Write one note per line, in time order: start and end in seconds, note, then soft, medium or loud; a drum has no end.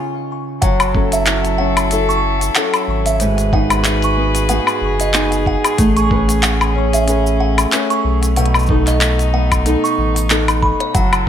0.00 0.69 C#3 medium
0.00 0.69 F4 medium
0.62 2.50 F#1 loud
0.62 3.17 F#3 medium
0.62 3.23 F#3 medium
0.62 3.17 E4 medium
0.62 3.17 A4 medium
0.62 0.79 F#5 medium
0.62 kick loud
0.62 closed hi-hat medium
0.62 shaker medium
0.80 closed hi-hat soft
0.80 low woodblock medium
0.80 shaker soft
0.94 1.58 C#4 medium
0.94 1.26 E4 medium
0.94 1.92 A4 medium
0.94 kick loud
1.12 1.26 E5 medium
1.12 closed hi-hat soft
1.12 shaker medium
1.26 1.91 E4 medium
1.26 clap loud
1.26 closed hi-hat medium
1.26 shaker medium
1.45 closed hi-hat soft
1.45 shaker soft
1.58 1.90 C#4 medium
1.58 1.76 F#5 medium
1.77 closed hi-hat soft
1.77 low woodblock medium
1.77 shaker medium
1.91 2.55 C#4 medium
1.91 2.55 E4 medium
1.91 2.56 A4 medium
1.91 closed hi-hat medium
1.91 shaker medium
2.09 2.23 C#6 medium
2.09 shaker soft
2.41 closed hi-hat soft
2.41 shaker medium
2.55 3.28 C#4 medium
2.55 3.28 E4 medium
2.55 3.28 A4 medium
2.55 2.73 F#5 loud
2.55 clap loud
2.55 closed hi-hat medium
2.55 shaker medium
2.74 closed hi-hat soft
2.74 low woodblock medium
2.74 shaker soft
2.88 4.60 G#1 medium
3.06 3.20 E5 medium
3.06 closed hi-hat soft
3.06 shaker medium
3.20 5.78 G#2 medium
3.20 5.76 F#4 medium
3.20 8.32 G#4 medium
3.20 5.76 B4 medium
3.20 closed hi-hat medium
3.20 shaker medium
3.38 closed hi-hat soft
3.38 shaker soft
3.53 4.17 B3 medium
3.53 3.84 D#4 medium
3.53 4.50 G#4 medium
3.53 3.70 F#5 loud
3.53 kick loud
3.70 closed hi-hat soft
3.70 low woodblock medium
3.70 shaker medium
3.84 4.49 D#4 medium
3.84 clap loud
3.84 closed hi-hat medium
3.84 shaker medium
4.02 4.17 C#6 medium
4.02 closed hi-hat soft
4.02 shaker soft
4.17 4.49 B3 medium
4.35 closed hi-hat soft
4.35 shaker medium
4.49 5.13 B3 medium
4.49 5.13 D#4 medium
4.49 5.15 G#4 medium
4.49 4.67 F#5 loud
4.49 closed hi-hat medium
4.49 shaker medium
4.67 low woodblock medium
4.67 shaker soft
4.82 5.57 F#1 medium
5.00 5.14 D#5 medium
5.00 closed hi-hat soft
5.00 shaker medium
5.14 6.11 B3 medium
5.14 5.86 D#4 medium
5.14 6.11 G#4 medium
5.14 clap medium
5.14 closed hi-hat medium
5.14 shaker medium
5.32 closed hi-hat soft
5.32 shaker soft
5.46 5.64 F#5 loud
5.46 kick medium
5.64 closed hi-hat soft
5.64 low woodblock medium
5.64 shaker medium
5.78 7.66 A1 loud
5.78 8.40 A3 medium
5.78 10.90 A3 medium
5.78 8.34 C#4 medium
5.78 kick loud
5.78 closed hi-hat medium
5.78 shaker medium
5.97 6.10 C#6 medium
5.97 closed hi-hat soft
5.97 shaker soft
6.11 6.74 C#4 medium
6.11 6.42 G#4 medium
6.11 7.08 B4 medium
6.11 kick loud
6.29 closed hi-hat soft
6.29 shaker medium
6.43 7.07 G#4 medium
6.43 6.60 F#5 loud
6.43 clap loud
6.43 closed hi-hat medium
6.43 shaker medium
6.61 closed hi-hat soft
6.61 low woodblock medium
6.61 shaker soft
6.75 7.07 C#4 medium
6.93 7.07 E5 medium
6.93 closed hi-hat soft
6.93 shaker medium
7.08 7.71 C#4 medium
7.08 7.72 G#4 medium
7.08 7.73 B4 medium
7.08 closed hi-hat medium
7.08 shaker medium
7.27 shaker soft
7.40 7.57 F#5 loud
7.58 closed hi-hat soft
7.58 low woodblock medium
7.58 shaker medium
7.72 8.44 C#4 medium
7.72 8.44 G#4 medium
7.72 8.70 B4 medium
7.72 clap medium
7.72 closed hi-hat medium
7.72 shaker medium
7.90 8.04 C#6 medium
7.90 closed hi-hat soft
7.90 shaker soft
8.04 9.76 B1 loud
8.23 closed hi-hat soft
8.23 shaker medium
8.36 10.95 B2 medium
8.36 10.92 B3 medium
8.36 10.92 D#4 medium
8.36 8.54 F#5 loud
8.36 closed hi-hat medium
8.36 shaker medium
8.46 closed hi-hat soft
8.54 low woodblock medium
8.54 shaker soft
8.59 shaker soft
8.62 shaker soft
8.66 9.32 B3 medium
8.66 9.00 D#4 medium
8.66 kick loud
8.66 shaker soft
8.70 9.66 A4 medium
8.87 9.01 D#5 medium
8.87 clap soft
8.87 closed hi-hat soft
8.87 shaker medium
9.01 9.65 D#4 medium
9.01 clap loud
9.01 closed hi-hat medium
9.01 shaker medium
9.19 closed hi-hat soft
9.19 shaker soft
9.33 9.64 B3 medium
9.33 9.51 F#5 medium
9.51 kick medium
9.51 closed hi-hat soft
9.51 low woodblock medium
9.51 shaker medium
9.65 10.29 B3 medium
9.65 10.29 D#4 medium
9.65 10.31 A4 medium
9.65 closed hi-hat medium
9.65 shaker medium
9.84 9.97 C#6 medium
9.84 shaker soft
9.98 10.73 A1 medium
10.16 closed hi-hat soft
10.16 shaker medium
10.30 11.02 B3 medium
10.30 11.02 D#4 medium
10.30 11.28 A4 medium
10.30 10.47 F#6 medium
10.30 clap loud
10.30 closed hi-hat medium
10.30 shaker medium
10.48 closed hi-hat soft
10.48 low woodblock medium
10.48 shaker soft
10.63 10.80 B5 medium
10.63 kick medium
10.80 10.88 C#5 medium
10.80 closed hi-hat soft
10.94 11.29 F#1 loud
10.94 11.29 F#3 medium
10.94 11.29 E4 medium
10.94 11.29 A4 medium
10.94 11.12 F#5 loud
10.94 kick loud
10.94 closed hi-hat medium
10.94 shaker medium
11.13 closed hi-hat soft
11.13 low woodblock medium
11.13 shaker soft